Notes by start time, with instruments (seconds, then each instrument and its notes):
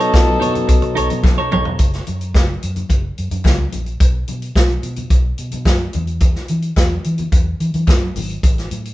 Already playing: french horn section C#3 F#3 B3 C#4 D#4, horn section F#3 D#4 A4
0.00 clean electric guitar D#4 A4 C#5, closed hi-hat
0.13 fingered electric bass B1, muted clean electric guitar stroke, kick, snare, clap, muted conga
0.27 muted clean electric guitar stroke
0.40 fingered electric bass B2, clean electric guitar D#4 A4 C#5, closed hi-hat, muted conga, low conga
0.54 muted clean electric guitar stroke, closed hi-hat, high conga, low conga
0.68 fingered electric bass B1, muted clean electric guitar stroke, kick, closed hi-hat, high conga
0.82 fingered electric bass B2, muted clean electric guitar stroke, closed hi-hat
0.95 fingered electric bass B1, clean electric guitar D#4 A4 C#5, closed hi-hat
1.10 fingered electric bass B2, muted clean electric guitar stroke, closed hi-hat, high conga
1.24 fingered electric bass B1, muted clean electric guitar stroke, kick, snare, clap, muted conga, high conga
1.38 fingered electric bass B2, clean electric guitar D#4 A4 C#5
1.52 fingered electric bass B1, clean electric guitar D#4 A4 C#5, mid tom, muted conga, high conga, low conga
1.65 fingered electric bass B2, muted clean electric guitar stroke, floor tom
1.79 fingered electric bass F#1, kick, closed hi-hat
1.93 snare, closed hi-hat
2.07 fingered electric bass F#2, closed hi-hat, muted conga, high conga
2.21 closed hi-hat
2.35 fingered electric bass F#1, kick, snare, clap, muted conga
2.63 fingered electric bass F#2, closed hi-hat, muted conga
2.76 closed hi-hat, high conga, low conga
2.89 fingered electric bass F#1, kick, closed hi-hat, muted conga, high conga
3.18 fingered electric bass F#2, closed hi-hat
3.31 fingered electric bass F#2, closed hi-hat, high conga
3.45 fingered electric bass C#2, kick, snare, clap, muted conga, high conga
3.72 fingered electric bass A#1, closed hi-hat, high conga, low conga
3.86 closed hi-hat
4.00 fingered electric bass B1, kick, closed hi-hat
4.28 fingered electric bass B2, closed hi-hat, high conga
4.42 closed hi-hat
4.56 fingered electric bass B1, kick, snare, clap
4.69 closed hi-hat
4.83 fingered electric bass B2, closed hi-hat, muted conga
4.96 closed hi-hat, high conga, low conga
5.10 fingered electric bass B1, kick, closed hi-hat, muted conga, high conga
5.38 fingered electric bass B2, closed hi-hat
5.52 fingered electric bass B2, closed hi-hat, high conga
5.65 fingered electric bass F#2, kick, snare, clap, muted conga, high conga
5.93 fingered electric bass E2, closed hi-hat, high conga, low conga
6.07 closed hi-hat
6.20 kick, closed hi-hat, muted conga
6.35 snare
6.48 fingered electric bass E3, closed hi-hat, high conga
6.62 closed hi-hat
6.77 fingered electric bass E2, kick, snare, clap
7.04 fingered electric bass E3, closed hi-hat
7.18 closed hi-hat, high conga, low conga
7.32 fingered electric bass E2, kick, closed hi-hat, muted conga, high conga
7.60 fingered electric bass E3, closed hi-hat, muted conga
7.74 fingered electric bass E3, closed hi-hat, high conga
7.87 fingered electric bass F#2, kick, snare, clap, high conga
8.15 fingered electric bass G#1, open hi-hat, muted conga, high conga, low conga
8.30 closed hi-hat
8.43 fingered electric bass A1, kick, closed hi-hat, muted conga
8.58 snare, closed hi-hat
8.71 fingered electric bass A2, closed hi-hat, high conga
8.85 closed hi-hat